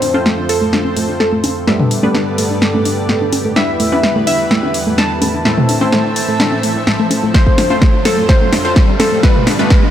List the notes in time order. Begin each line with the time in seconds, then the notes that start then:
Already playing: F2 F3 A3 C4 F4 A4 C5, riser
0.02 D4, open hi-hat
0.14 A3 C4 F4 C5, high conga
0.26 A3, snare
0.38 D4
0.49 A4, open hi-hat
0.61 A3
0.73 D4, snare
0.85 high conga
0.96 A3, open hi-hat
1.09 D4
1.20 A4, snare
1.32 A3
1.44 D4, open hi-hat, high conga
1.67 G2 D3 G3 A3 B3 D4 G4 D5 E5, snare
1.80 D4, mid tom
1.91 open hi-hat
2.03 G2 G3 A3 B3 D4 B4, high conga
2.14 D4, snare
2.38 A3, open hi-hat
2.50 D4
2.62 snare
2.74 A3, high conga
2.85 D4, open hi-hat
3.09 A3, snare
3.21 D4
3.33 open hi-hat, high conga
3.45 A3
3.56 E2 E3 G3 B3 D4 E4 B4 E5, snare
3.80 A3, open hi-hat
3.92 G3 B3 D4 E4 B4, high conga
4.03 snare
4.16 A3
4.27 D4 E5, open hi-hat
4.51 A3, snare
4.63 D4, high conga
4.74 open hi-hat
4.87 A3
4.98 D4 A5, snare
5.22 A3, open hi-hat, high conga
5.34 D4
5.45 A2 A3 C4 E4 A4 E5, snare
5.58 A3, mid tom
5.69 D4, open hi-hat
5.81 A2 A3 C4 E4 C5, high conga
5.92 A3, snare
6.05 D4
6.16 open hi-hat
6.28 A3
6.40 D4, snare
6.52 high conga
6.63 A3, open hi-hat
6.76 A3
6.87 A2, snare
6.99 A3
7.11 A3, open hi-hat, high conga
7.23 A3
7.34 F2 F3 A3 C4 F4 C5, kick, snare
7.47 A3, kick
7.58 D4, snare, open hi-hat
7.70 A3 C4 F4 C5, high conga
7.82 A3, kick, snare
7.94 D4
8.05 A4, snare, open hi-hat
8.18 A3
8.29 A3 C4 F4 C5, kick, snare
8.41 A3, high conga
8.52 D4, snare, open hi-hat
8.65 A3 C4 F4 C5
8.76 A3, kick, snare
8.88 D4
9.00 A4, snare, open hi-hat, high conga
9.12 A3
9.23 G2 D3 A3 B3 F4 G4 B4 D5, kick, snare
9.35 A3, mid tom
9.47 D4, snare, open hi-hat
9.59 A3 B3 F4 B4, high conga
9.70 A3, kick, snare
9.83 D4